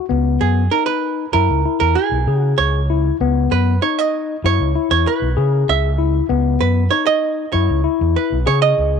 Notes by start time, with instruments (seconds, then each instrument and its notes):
0.09 fingered electric bass C#2, tine electric piano B3
0.41 fingered electric bass F#2, hollow-body jazz guitar G#4
0.71 tine electric piano D#4, hollow-body jazz guitar A#4
0.86 hollow-body jazz guitar B4
1.33 fingered electric bass F#2, tine electric piano E4, hollow-body jazz guitar A#4
1.50 fingered electric bass C#2
1.65 tine electric piano E4
1.80 fingered electric bass E2, hollow-body jazz guitar A#4
1.95 hollow-body jazz guitar G#4
2.11 fingered electric bass B1
2.27 fingered electric bass C#3, tine electric piano G#4
2.40 hollow-body jazz guitar F#4
2.58 fingered electric bass C#2, hollow-body jazz guitar C#5
2.90 tine electric piano E4
3.20 fingered electric bass C#2, tine electric piano B3
3.52 fingered electric bass F#2, hollow-body jazz guitar B4
3.82 tine electric piano D#4, hollow-body jazz guitar C#5
3.99 hollow-body jazz guitar D#5
4.44 fingered electric bass F#2, tine electric piano E4, hollow-body jazz guitar C#5
4.60 fingered electric bass C#2
4.75 tine electric piano E4
4.91 fingered electric bass E2, hollow-body jazz guitar C#5
5.07 hollow-body jazz guitar B4
5.22 fingered electric bass B1
5.37 fingered electric bass C#3, tine electric piano G#4
5.52 hollow-body jazz guitar A#4
5.69 fingered electric bass C#2, hollow-body jazz guitar E5
5.98 tine electric piano E4
6.29 fingered electric bass C#2, tine electric piano B3
6.61 fingered electric bass F#2, hollow-body jazz guitar B4
6.91 tine electric piano D#4, hollow-body jazz guitar C#5
7.07 hollow-body jazz guitar D#5
7.52 fingered electric bass F#2, tine electric piano E4, hollow-body jazz guitar C#5
7.70 fingered electric bass C#2
7.84 tine electric piano E4
8.01 fingered electric bass E2
8.16 hollow-body jazz guitar B4
8.32 fingered electric bass B1
8.46 fingered electric bass C#3, tine electric piano G#4, hollow-body jazz guitar C#5
8.62 hollow-body jazz guitar D#5
8.78 fingered electric bass C#2